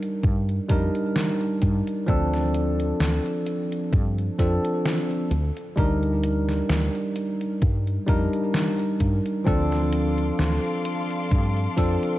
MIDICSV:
0, 0, Header, 1, 5, 480
1, 0, Start_track
1, 0, Tempo, 923077
1, 1082, Time_signature, 4, 2, 24, 8
1, 6338, End_track
2, 0, Start_track
2, 0, Title_t, "String section"
2, 0, Program_c, 0, 48
2, 4924, Note_on_c, 0, 84, 68
2, 4925, Note_on_c, 0, 69, 75
2, 4925, Note_on_c, 0, 86, 79
2, 4926, Note_on_c, 0, 77, 66
2, 6338, Note_off_c, 0, 69, 0
2, 6338, Note_off_c, 0, 77, 0
2, 6338, Note_off_c, 0, 84, 0
2, 6338, Note_off_c, 0, 86, 0
2, 6338, End_track
3, 0, Start_track
3, 0, Title_t, "Tine electric piano"
3, 0, Program_c, 1, 4
3, 0, Control_c, 1, 64, 127
3, 0, Note_on_c, 1, 55, 84
3, 0, Note_on_c, 1, 62, 76
3, 0, Note_on_c, 1, 63, 76
3, 0, Note_on_c, 1, 70, 95
3, 331, Note_off_c, 1, 55, 0
3, 334, Note_off_c, 1, 62, 0
3, 337, Note_off_c, 1, 63, 0
3, 339, Note_off_c, 1, 70, 0
3, 356, Note_on_c, 1, 55, 80
3, 361, Note_on_c, 1, 62, 73
3, 366, Note_on_c, 1, 63, 76
3, 371, Note_on_c, 1, 70, 91
3, 1053, Note_off_c, 1, 55, 0
3, 1055, Note_off_c, 1, 62, 0
3, 1058, Note_off_c, 1, 63, 0
3, 1060, Note_off_c, 1, 70, 0
3, 1073, Note_on_c, 1, 53, 95
3, 1079, Note_on_c, 1, 60, 83
3, 1084, Note_on_c, 1, 62, 84
3, 1089, Control_c, 1, 64, 0
3, 1089, Note_on_c, 1, 69, 101
3, 1187, Control_c, 1, 64, 127
3, 2251, Note_off_c, 1, 53, 0
3, 2255, Note_off_c, 1, 60, 0
3, 2257, Note_off_c, 1, 62, 0
3, 2259, Note_off_c, 1, 69, 0
3, 2279, Note_on_c, 1, 53, 77
3, 2282, Note_on_c, 1, 60, 70
3, 2284, Note_on_c, 1, 62, 72
3, 2287, Note_on_c, 1, 69, 87
3, 2747, Note_off_c, 1, 53, 0
3, 2749, Note_off_c, 1, 60, 0
3, 2750, Note_off_c, 1, 62, 0
3, 2751, Note_off_c, 1, 69, 0
3, 2769, Control_c, 1, 64, 0
3, 2854, Control_c, 1, 64, 127
3, 2994, Note_on_c, 1, 55, 85
3, 3000, Note_on_c, 1, 62, 75
3, 3005, Note_on_c, 1, 63, 77
3, 3010, Note_on_c, 1, 70, 90
3, 4172, Note_off_c, 1, 55, 0
3, 4175, Note_off_c, 1, 62, 0
3, 4178, Note_off_c, 1, 63, 0
3, 4180, Note_off_c, 1, 70, 0
3, 4194, Note_on_c, 1, 55, 78
3, 4199, Note_on_c, 1, 62, 75
3, 4203, Note_on_c, 1, 63, 74
3, 4209, Note_on_c, 1, 70, 89
3, 4892, Note_off_c, 1, 55, 0
3, 4894, Note_off_c, 1, 62, 0
3, 4897, Note_off_c, 1, 63, 0
3, 4899, Note_off_c, 1, 70, 0
3, 4911, Note_on_c, 1, 53, 89
3, 4917, Note_on_c, 1, 60, 84
3, 4922, Note_on_c, 1, 62, 85
3, 4927, Note_on_c, 1, 69, 103
3, 4929, Control_c, 1, 64, 0
3, 5028, Control_c, 1, 64, 127
3, 6090, Note_off_c, 1, 53, 0
3, 6093, Note_off_c, 1, 60, 0
3, 6096, Note_off_c, 1, 62, 0
3, 6098, Note_off_c, 1, 69, 0
3, 6119, Note_on_c, 1, 53, 80
3, 6122, Note_on_c, 1, 60, 71
3, 6124, Note_on_c, 1, 62, 70
3, 6126, Note_on_c, 1, 69, 89
3, 6338, Note_off_c, 1, 53, 0
3, 6338, Note_off_c, 1, 60, 0
3, 6338, Note_off_c, 1, 62, 0
3, 6338, Note_off_c, 1, 69, 0
3, 6338, End_track
4, 0, Start_track
4, 0, Title_t, "Fretless electric bass"
4, 0, Program_c, 2, 35
4, 122, Note_on_c, 2, 43, 91
4, 305, Note_off_c, 2, 43, 0
4, 362, Note_on_c, 2, 41, 77
4, 459, Note_off_c, 2, 41, 0
4, 842, Note_on_c, 2, 43, 88
4, 939, Note_off_c, 2, 43, 0
4, 1082, Note_on_c, 2, 38, 94
4, 1516, Note_off_c, 2, 38, 0
4, 1560, Note_on_c, 2, 38, 79
4, 1658, Note_off_c, 2, 38, 0
4, 2042, Note_on_c, 2, 43, 91
4, 2225, Note_off_c, 2, 43, 0
4, 2282, Note_on_c, 2, 41, 79
4, 2379, Note_off_c, 2, 41, 0
4, 2760, Note_on_c, 2, 38, 91
4, 2858, Note_off_c, 2, 38, 0
4, 3001, Note_on_c, 2, 38, 95
4, 3436, Note_off_c, 2, 38, 0
4, 3480, Note_on_c, 2, 38, 76
4, 3578, Note_off_c, 2, 38, 0
4, 3962, Note_on_c, 2, 43, 92
4, 4145, Note_off_c, 2, 43, 0
4, 4202, Note_on_c, 2, 41, 76
4, 4299, Note_off_c, 2, 41, 0
4, 4682, Note_on_c, 2, 43, 85
4, 4779, Note_off_c, 2, 43, 0
4, 4923, Note_on_c, 2, 38, 97
4, 5356, Note_off_c, 2, 38, 0
4, 5402, Note_on_c, 2, 38, 77
4, 5499, Note_off_c, 2, 38, 0
4, 5882, Note_on_c, 2, 43, 95
4, 6065, Note_off_c, 2, 43, 0
4, 6123, Note_on_c, 2, 41, 79
4, 6220, Note_off_c, 2, 41, 0
4, 6338, End_track
5, 0, Start_track
5, 0, Title_t, "Drums"
5, 13, Note_on_c, 9, 42, 56
5, 65, Note_off_c, 9, 42, 0
5, 121, Note_on_c, 9, 42, 50
5, 122, Note_on_c, 9, 36, 116
5, 173, Note_off_c, 9, 42, 0
5, 174, Note_off_c, 9, 36, 0
5, 254, Note_on_c, 9, 42, 27
5, 306, Note_off_c, 9, 42, 0
5, 360, Note_on_c, 9, 42, 97
5, 362, Note_on_c, 9, 36, 106
5, 412, Note_off_c, 9, 42, 0
5, 414, Note_off_c, 9, 36, 0
5, 493, Note_on_c, 9, 42, 53
5, 545, Note_off_c, 9, 42, 0
5, 602, Note_on_c, 9, 38, 115
5, 602, Note_on_c, 9, 42, 53
5, 654, Note_off_c, 9, 38, 0
5, 654, Note_off_c, 9, 42, 0
5, 732, Note_on_c, 9, 42, 27
5, 784, Note_off_c, 9, 42, 0
5, 840, Note_on_c, 9, 42, 94
5, 842, Note_on_c, 9, 36, 60
5, 892, Note_off_c, 9, 42, 0
5, 894, Note_off_c, 9, 36, 0
5, 973, Note_on_c, 9, 42, 54
5, 1025, Note_off_c, 9, 42, 0
5, 1081, Note_on_c, 9, 42, 54
5, 1082, Note_on_c, 9, 36, 118
5, 1133, Note_off_c, 9, 42, 0
5, 1134, Note_off_c, 9, 36, 0
5, 1214, Note_on_c, 9, 38, 38
5, 1214, Note_on_c, 9, 42, 28
5, 1266, Note_off_c, 9, 38, 0
5, 1266, Note_off_c, 9, 42, 0
5, 1323, Note_on_c, 9, 42, 94
5, 1375, Note_off_c, 9, 42, 0
5, 1455, Note_on_c, 9, 42, 52
5, 1507, Note_off_c, 9, 42, 0
5, 1563, Note_on_c, 9, 38, 123
5, 1563, Note_on_c, 9, 42, 51
5, 1615, Note_off_c, 9, 38, 0
5, 1615, Note_off_c, 9, 42, 0
5, 1696, Note_on_c, 9, 42, 27
5, 1748, Note_off_c, 9, 42, 0
5, 1803, Note_on_c, 9, 42, 90
5, 1855, Note_off_c, 9, 42, 0
5, 1936, Note_on_c, 9, 42, 56
5, 1988, Note_off_c, 9, 42, 0
5, 2042, Note_on_c, 9, 36, 122
5, 2044, Note_on_c, 9, 42, 49
5, 2094, Note_off_c, 9, 36, 0
5, 2096, Note_off_c, 9, 42, 0
5, 2176, Note_on_c, 9, 42, 27
5, 2228, Note_off_c, 9, 42, 0
5, 2282, Note_on_c, 9, 36, 64
5, 2284, Note_on_c, 9, 42, 94
5, 2334, Note_off_c, 9, 36, 0
5, 2336, Note_off_c, 9, 42, 0
5, 2416, Note_on_c, 9, 42, 53
5, 2468, Note_off_c, 9, 42, 0
5, 2525, Note_on_c, 9, 38, 115
5, 2525, Note_on_c, 9, 42, 55
5, 2577, Note_off_c, 9, 38, 0
5, 2577, Note_off_c, 9, 42, 0
5, 2656, Note_on_c, 9, 42, 27
5, 2708, Note_off_c, 9, 42, 0
5, 2762, Note_on_c, 9, 42, 94
5, 2814, Note_off_c, 9, 42, 0
5, 2894, Note_on_c, 9, 42, 50
5, 2946, Note_off_c, 9, 42, 0
5, 3002, Note_on_c, 9, 36, 112
5, 3002, Note_on_c, 9, 42, 49
5, 3054, Note_off_c, 9, 36, 0
5, 3054, Note_off_c, 9, 42, 0
5, 3134, Note_on_c, 9, 42, 26
5, 3186, Note_off_c, 9, 42, 0
5, 3242, Note_on_c, 9, 42, 93
5, 3294, Note_off_c, 9, 42, 0
5, 3372, Note_on_c, 9, 38, 36
5, 3372, Note_on_c, 9, 42, 47
5, 3424, Note_off_c, 9, 38, 0
5, 3424, Note_off_c, 9, 42, 0
5, 3481, Note_on_c, 9, 38, 122
5, 3481, Note_on_c, 9, 42, 50
5, 3533, Note_off_c, 9, 38, 0
5, 3533, Note_off_c, 9, 42, 0
5, 3614, Note_on_c, 9, 42, 24
5, 3666, Note_off_c, 9, 42, 0
5, 3722, Note_on_c, 9, 42, 89
5, 3774, Note_off_c, 9, 42, 0
5, 3853, Note_on_c, 9, 42, 53
5, 3905, Note_off_c, 9, 42, 0
5, 3961, Note_on_c, 9, 42, 49
5, 3962, Note_on_c, 9, 36, 113
5, 4013, Note_off_c, 9, 42, 0
5, 4014, Note_off_c, 9, 36, 0
5, 4094, Note_on_c, 9, 42, 25
5, 4146, Note_off_c, 9, 42, 0
5, 4201, Note_on_c, 9, 42, 90
5, 4202, Note_on_c, 9, 36, 106
5, 4253, Note_off_c, 9, 42, 0
5, 4254, Note_off_c, 9, 36, 0
5, 4334, Note_on_c, 9, 42, 50
5, 4386, Note_off_c, 9, 42, 0
5, 4442, Note_on_c, 9, 38, 116
5, 4442, Note_on_c, 9, 42, 53
5, 4494, Note_off_c, 9, 38, 0
5, 4494, Note_off_c, 9, 42, 0
5, 4573, Note_on_c, 9, 42, 26
5, 4625, Note_off_c, 9, 42, 0
5, 4682, Note_on_c, 9, 42, 89
5, 4683, Note_on_c, 9, 36, 59
5, 4734, Note_off_c, 9, 42, 0
5, 4735, Note_off_c, 9, 36, 0
5, 4814, Note_on_c, 9, 42, 49
5, 4866, Note_off_c, 9, 42, 0
5, 4923, Note_on_c, 9, 36, 109
5, 4923, Note_on_c, 9, 42, 50
5, 4975, Note_off_c, 9, 36, 0
5, 4975, Note_off_c, 9, 42, 0
5, 5055, Note_on_c, 9, 38, 38
5, 5055, Note_on_c, 9, 42, 25
5, 5107, Note_off_c, 9, 38, 0
5, 5107, Note_off_c, 9, 42, 0
5, 5161, Note_on_c, 9, 42, 87
5, 5213, Note_off_c, 9, 42, 0
5, 5294, Note_on_c, 9, 42, 44
5, 5346, Note_off_c, 9, 42, 0
5, 5403, Note_on_c, 9, 38, 118
5, 5403, Note_on_c, 9, 42, 50
5, 5455, Note_off_c, 9, 38, 0
5, 5455, Note_off_c, 9, 42, 0
5, 5534, Note_on_c, 9, 42, 24
5, 5586, Note_off_c, 9, 42, 0
5, 5643, Note_on_c, 9, 42, 89
5, 5695, Note_off_c, 9, 42, 0
5, 5775, Note_on_c, 9, 42, 51
5, 5827, Note_off_c, 9, 42, 0
5, 5883, Note_on_c, 9, 36, 114
5, 5883, Note_on_c, 9, 42, 49
5, 5935, Note_off_c, 9, 36, 0
5, 5935, Note_off_c, 9, 42, 0
5, 6015, Note_on_c, 9, 42, 25
5, 6067, Note_off_c, 9, 42, 0
5, 6123, Note_on_c, 9, 36, 57
5, 6123, Note_on_c, 9, 42, 86
5, 6175, Note_off_c, 9, 36, 0
5, 6175, Note_off_c, 9, 42, 0
5, 6256, Note_on_c, 9, 42, 49
5, 6308, Note_off_c, 9, 42, 0
5, 6338, End_track
0, 0, End_of_file